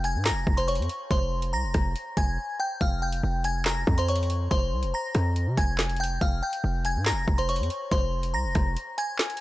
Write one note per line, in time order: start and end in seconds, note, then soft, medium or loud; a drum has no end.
0.00 0.16 F1 loud
0.04 0.23 G#5 medium
0.04 0.23 G#6 medium
0.04 closed hi-hat medium
0.15 0.32 G#2 loud
0.25 0.55 A#5 medium
0.25 0.56 A#6 medium
0.25 snare loud
0.25 clap loud
0.31 0.46 F1 loud
0.47 0.80 F1 loud
0.47 kick loud
0.57 0.67 C5 medium
0.57 0.67 C6 medium
0.57 closed hi-hat medium
0.68 1.08 C#5 medium
0.68 1.08 C#6 medium
0.68 closed hi-hat medium
0.75 0.89 F2 loud
0.75 closed hi-hat medium
0.82 closed hi-hat soft
0.89 closed hi-hat medium
1.11 1.55 F1 loud
1.11 1.51 C5 medium
1.11 1.51 C6 loud
1.11 kick loud
1.11 closed hi-hat medium
1.42 closed hi-hat medium
1.53 1.65 C2 loud
1.53 2.13 A#5 medium
1.53 2.14 A#6 medium
1.64 1.74 F1 loud
1.74 1.95 F1 loud
1.74 kick medium
1.74 cross-stick loud
1.74 closed hi-hat medium
1.96 closed hi-hat medium
2.17 2.38 F1 loud
2.17 2.57 G#5 medium
2.17 2.57 G#6 medium
2.17 kick medium
2.17 closed hi-hat medium
2.60 2.78 G5 medium
2.60 2.79 G6 medium
2.81 3.22 F1 loud
2.81 3.00 F5 medium
2.81 3.00 F6 medium
2.81 kick loud
2.81 closed hi-hat medium
3.02 3.42 G5 medium
3.02 3.43 G6 medium
3.12 closed hi-hat medium
3.23 3.85 F1 loud
3.44 3.63 G#5 medium
3.44 3.64 G#6 medium
3.44 closed hi-hat medium
3.65 3.96 A#5 medium
3.65 3.96 A#6 medium
3.65 snare loud
3.65 clap loud
3.87 4.48 F2 loud
3.87 kick medium
3.98 4.08 C5 medium
3.98 4.07 C6 medium
3.98 closed hi-hat medium
4.08 4.49 C#5 medium
4.08 4.49 C#6 medium
4.08 closed hi-hat medium
4.16 closed hi-hat medium
4.23 closed hi-hat soft
4.30 closed hi-hat medium
4.51 4.74 F1 loud
4.51 4.91 C5 medium
4.51 4.91 C6 loud
4.51 kick loud
4.51 closed hi-hat medium
4.72 4.85 C2 loud
4.83 4.93 F1 loud
4.83 closed hi-hat medium
4.94 5.54 A#5 medium
4.94 5.54 A#6 medium
5.15 5.48 F2 loud
5.15 cross-stick medium
5.15 closed hi-hat medium
5.36 closed hi-hat medium
5.47 5.57 C3 loud
5.57 6.19 F1 loud
5.57 5.97 G#5 medium
5.57 5.98 G#6 medium
5.57 kick medium
5.57 closed hi-hat medium
5.78 snare loud
5.78 clap medium
5.89 closed hi-hat soft
5.96 6.19 G5 medium
5.96 closed hi-hat medium
6.01 6.19 G6 medium
6.01 closed hi-hat medium
6.21 6.42 F1 loud
6.21 6.40 F5 medium
6.21 6.41 F6 medium
6.21 kick loud
6.21 closed hi-hat medium
6.43 6.83 G5 medium
6.43 6.83 G6 medium
6.53 closed hi-hat medium
6.64 6.97 F1 loud
6.85 7.04 G#5 medium
6.85 7.04 G#6 medium
6.85 closed hi-hat medium
6.96 7.13 G#2 loud
7.05 7.36 A#5 medium
7.05 7.37 A#6 medium
7.05 snare loud
7.05 clap loud
7.12 7.27 F1 loud
7.28 7.61 F1 loud
7.28 kick medium
7.38 7.48 C5 medium
7.38 7.47 C6 medium
7.38 closed hi-hat medium
7.49 7.89 C#5 medium
7.49 7.89 C#6 medium
7.49 closed hi-hat medium
7.56 7.70 F2 loud
7.56 closed hi-hat medium
7.63 closed hi-hat soft
7.70 closed hi-hat medium
7.91 8.36 F1 loud
7.91 8.32 C5 medium
7.91 8.31 C6 loud
7.91 kick loud
7.91 closed hi-hat medium
8.23 closed hi-hat medium
8.34 8.46 C2 loud
8.34 8.94 A#5 medium
8.34 8.94 A#6 medium
8.45 8.55 F1 loud
8.55 8.77 F1 loud
8.55 kick medium
8.55 cross-stick medium
8.55 closed hi-hat medium
8.77 closed hi-hat medium
8.98 9.38 G#5 medium
8.98 9.38 G#6 medium
8.98 closed hi-hat medium
9.18 snare loud
9.18 clap medium
9.30 closed hi-hat medium
9.37 closed hi-hat medium